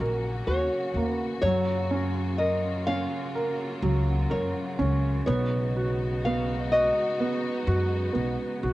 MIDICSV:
0, 0, Header, 1, 5, 480
1, 0, Start_track
1, 0, Key_signature, 6, "major"
1, 0, Tempo, 960000
1, 718, Time_signature, 4, 2, 24, 8
1, 4365, End_track
2, 0, Start_track
2, 0, Title_t, "Nylon-string guitar"
2, 0, Program_c, 0, 24
2, 0, Note_on_c, 0, 75, 99
2, 233, Note_off_c, 0, 75, 0
2, 235, Note_on_c, 0, 73, 80
2, 560, Note_off_c, 0, 73, 0
2, 560, Note_on_c, 0, 71, 80
2, 697, Note_off_c, 0, 71, 0
2, 707, Note_on_c, 0, 73, 96
2, 1189, Note_off_c, 0, 73, 0
2, 1191, Note_on_c, 0, 75, 83
2, 1431, Note_off_c, 0, 75, 0
2, 1433, Note_on_c, 0, 77, 103
2, 2154, Note_off_c, 0, 77, 0
2, 2156, Note_on_c, 0, 73, 84
2, 2625, Note_off_c, 0, 73, 0
2, 2631, Note_on_c, 0, 73, 83
2, 3122, Note_off_c, 0, 73, 0
2, 3124, Note_on_c, 0, 77, 89
2, 3357, Note_off_c, 0, 77, 0
2, 3359, Note_on_c, 0, 75, 88
2, 4298, Note_off_c, 0, 75, 0
2, 4365, End_track
3, 0, Start_track
3, 0, Title_t, "Felt piano"
3, 0, Program_c, 1, 0
3, 0, Control_c, 1, 64, 127
3, 0, Note_on_c, 1, 51, 67
3, 0, Note_on_c, 1, 58, 50
3, 0, Note_on_c, 1, 66, 55
3, 0, Note_on_c, 1, 70, 57
3, 4, Note_off_c, 1, 70, 0
3, 4, Note_on_c, 1, 70, 54
3, 232, Note_off_c, 1, 66, 0
3, 239, Note_on_c, 1, 66, 56
3, 483, Note_off_c, 1, 58, 0
3, 483, Note_on_c, 1, 58, 57
3, 702, Note_off_c, 1, 70, 0
3, 704, Note_off_c, 1, 51, 0
3, 705, Note_off_c, 1, 66, 0
3, 714, Note_off_c, 1, 58, 0
3, 725, Control_c, 1, 64, 0
3, 725, Note_on_c, 1, 54, 70
3, 804, Control_c, 1, 64, 127
3, 954, Note_on_c, 1, 61, 55
3, 1196, Note_on_c, 1, 70, 55
3, 1431, Note_off_c, 1, 61, 0
3, 1439, Note_on_c, 1, 61, 55
3, 1669, Note_off_c, 1, 70, 0
3, 1676, Note_on_c, 1, 70, 61
3, 1907, Note_off_c, 1, 54, 0
3, 1915, Note_on_c, 1, 54, 56
3, 2141, Note_off_c, 1, 70, 0
3, 2149, Note_on_c, 1, 70, 60
3, 2378, Note_off_c, 1, 61, 0
3, 2394, Note_on_c, 1, 61, 59
3, 2615, Note_off_c, 1, 54, 0
3, 2618, Note_off_c, 1, 70, 0
3, 2628, Note_off_c, 1, 61, 0
3, 2635, Note_on_c, 1, 59, 74
3, 2643, Control_c, 1, 64, 0
3, 2716, Control_c, 1, 64, 127
3, 2883, Note_on_c, 1, 66, 48
3, 3123, Note_off_c, 1, 59, 0
3, 3130, Note_on_c, 1, 59, 54
3, 3355, Note_off_c, 1, 66, 0
3, 3363, Note_on_c, 1, 66, 52
3, 3594, Note_off_c, 1, 59, 0
3, 3601, Note_on_c, 1, 59, 59
3, 3831, Note_off_c, 1, 66, 0
3, 3838, Note_on_c, 1, 66, 55
3, 4058, Note_off_c, 1, 59, 0
3, 4066, Note_on_c, 1, 59, 49
3, 4309, Note_off_c, 1, 66, 0
3, 4316, Note_on_c, 1, 66, 58
3, 4365, Note_off_c, 1, 59, 0
3, 4365, Note_off_c, 1, 66, 0
3, 4365, End_track
4, 0, Start_track
4, 0, Title_t, "String section"
4, 0, Program_c, 2, 48
4, 0, Note_on_c, 2, 49, 75
4, 0, Note_on_c, 2, 54, 65
4, 0, Note_on_c, 2, 58, 66
4, 0, Note_on_c, 2, 61, 64
4, 0, Note_on_c, 2, 66, 76
4, 697, Note_off_c, 2, 54, 0
4, 700, Note_off_c, 2, 58, 0
4, 714, Note_off_c, 2, 61, 0
4, 719, Note_on_c, 2, 58, 65
4, 720, Note_on_c, 2, 54, 64
4, 724, Note_on_c, 2, 65, 65
4, 2617, Note_off_c, 2, 66, 0
4, 2619, Note_off_c, 2, 54, 0
4, 2619, Note_off_c, 2, 58, 0
4, 2621, Note_off_c, 2, 65, 0
4, 2634, Note_on_c, 2, 63, 73
4, 2635, Note_on_c, 2, 66, 86
4, 2636, Note_on_c, 2, 56, 69
4, 2636, Note_on_c, 2, 59, 65
4, 4365, Note_off_c, 2, 49, 0
4, 4365, Note_off_c, 2, 56, 0
4, 4365, Note_off_c, 2, 59, 0
4, 4365, Note_off_c, 2, 63, 0
4, 4365, Note_off_c, 2, 66, 0
4, 4365, End_track
5, 0, Start_track
5, 0, Title_t, "Upright bass"
5, 0, Program_c, 3, 32
5, 0, Note_on_c, 3, 34, 82
5, 201, Note_off_c, 3, 34, 0
5, 234, Note_on_c, 3, 39, 78
5, 338, Note_off_c, 3, 39, 0
5, 471, Note_on_c, 3, 39, 73
5, 677, Note_off_c, 3, 39, 0
5, 712, Note_on_c, 3, 42, 99
5, 1527, Note_off_c, 3, 42, 0
5, 1912, Note_on_c, 3, 37, 89
5, 2118, Note_off_c, 3, 37, 0
5, 2154, Note_on_c, 3, 42, 94
5, 2258, Note_off_c, 3, 42, 0
5, 2395, Note_on_c, 3, 37, 85
5, 2598, Note_off_c, 3, 37, 0
5, 2637, Note_on_c, 3, 35, 103
5, 3446, Note_off_c, 3, 35, 0
5, 3836, Note_on_c, 3, 42, 94
5, 4038, Note_off_c, 3, 42, 0
5, 4075, Note_on_c, 3, 35, 87
5, 4177, Note_off_c, 3, 35, 0
5, 4315, Note_on_c, 3, 35, 80
5, 4365, Note_off_c, 3, 35, 0
5, 4365, End_track
0, 0, End_of_file